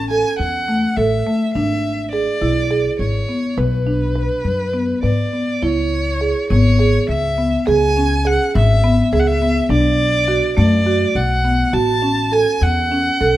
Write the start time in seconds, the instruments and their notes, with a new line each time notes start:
Already playing: upright bass A1
0.10 marimba A4, violin G#5
0.39 upright bass E2, violin F#5
0.68 marimba A3
0.96 upright bass A1, marimba A4, violin E5
1.26 marimba A3
1.54 upright bass G#1, marimba D4, violin E5
2.11 marimba G#4, violin D5
2.41 upright bass B1, marimba E4
2.71 marimba G#4
2.99 upright bass G#1, violin C#5
3.29 marimba B3
3.57 upright bass B1, marimba B4, violin B4
3.87 marimba D4
4.16 marimba B4
4.44 upright bass F#2
4.74 marimba B3
5.03 upright bass G#2, marimba B4, violin D5
5.33 marimba B3
5.62 upright bass C#2, marimba E4, violin C#5
6.21 marimba G#4
6.50 upright bass G#1, marimba B3, violin C#5
6.79 marimba G#4
7.09 upright bass C#2, violin E5
7.38 marimba B3
7.67 upright bass C#2, marimba G#4, violin G#5
7.97 marimba C#4
8.25 marimba G#4, violin F#5
8.55 upright bass G#1, violin E5
8.84 marimba B3
9.12 upright bass C#2, marimba G#4, violin E5
9.19 violin F#5
9.27 violin E5
9.42 marimba B3
9.69 upright bass B1, marimba D4, violin D5
10.28 marimba F#4
10.57 upright bass F#2, marimba A3, violin D5
10.87 marimba F#4
11.15 upright bass B1, violin F#5
11.45 marimba B3
11.73 upright bass A1, marimba F#4, violin A5
12.02 marimba C#4
12.32 marimba A4, violin G#5
12.61 upright bass E2, violin F#5
12.91 marimba C#4
13.21 upright bass B1, marimba A4